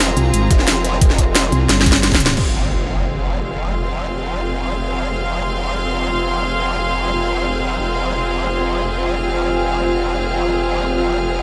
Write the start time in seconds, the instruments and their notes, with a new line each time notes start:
Already playing: wobble bass F1, string section C4 G#4 F5 A#5, ambient pad F4 C5 G5 C6
0.08 snare
0.17 wobble bass C2, closed hi-hat
0.34 wobble bass G#1, closed hi-hat
0.51 wobble bass F1, kick, snare, closed hi-hat
0.59 snare
0.68 snare, closed hi-hat
0.85 snare, closed hi-hat
0.93 snare
1.01 wobble bass F1, kick, closed hi-hat
1.10 snare
1.18 kick, closed hi-hat
1.35 snare, closed hi-hat
1.44 snare
1.52 wobble bass C2, closed hi-hat
1.69 wobble bass G1, snare, closed hi-hat
1.78 snare, closed hi-hat
1.86 kick, snare, closed hi-hat
1.92 snare
1.95 snare
2.03 snare, closed hi-hat
2.12 kick, snare, closed hi-hat
2.15 snare
2.20 snare, closed hi-hat
2.26 snare, closed hi-hat
2.37 wobble bass F1, string section C4, ambient pad F4 C5 G5 G#5, crash, impact
2.52 string section F5
2.73 string section G#4
3.69 string section C6
5.08 ambient pad A#5
7.79 wobble bass F1, ambient pad G#5
9.11 string section F6
10.51 ambient pad C6